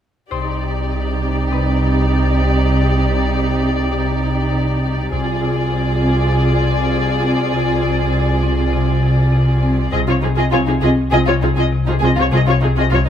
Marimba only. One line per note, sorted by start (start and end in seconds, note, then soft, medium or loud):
0.32 0.50 C3 soft
0.63 0.81 C3 soft
0.92 1.10 C3 soft
1.23 1.41 C4 soft
1.52 1.70 C3 soft
1.83 2.01 C3 soft
2.13 2.31 C3 soft
2.42 2.60 C4 soft
2.72 2.90 C3 soft
3.02 3.20 C3 soft
3.32 3.50 C3 soft
3.63 3.81 C4 soft
3.93 4.10 C3 soft
4.23 4.41 C3 soft
4.52 4.70 C3 soft
4.82 5.00 C4 soft
5.12 5.30 C3 soft
5.42 5.60 C3 soft
5.72 5.90 C3 soft
6.03 6.21 C4 soft
6.33 6.51 C3 soft
6.63 6.81 C3 soft
6.93 7.11 C3 soft
7.23 7.41 C4 soft
7.53 7.71 C3 medium
7.83 8.01 C3 soft
8.13 8.31 C3 soft
8.43 8.61 C4 soft
8.73 8.91 C3 medium
9.02 9.20 C3 soft
9.33 9.50 C3 soft
9.63 9.81 C4 soft
9.93 10.10 C3 medium
10.23 10.41 C3 soft
10.53 10.71 C3 soft
10.83 11.01 C4 soft
11.12 11.30 C3 medium
11.43 11.60 C3 soft
11.72 11.90 C3 soft
12.02 12.20 C4 soft
12.32 12.50 C3 medium
12.62 12.80 C3 soft
12.92 13.09 C3 soft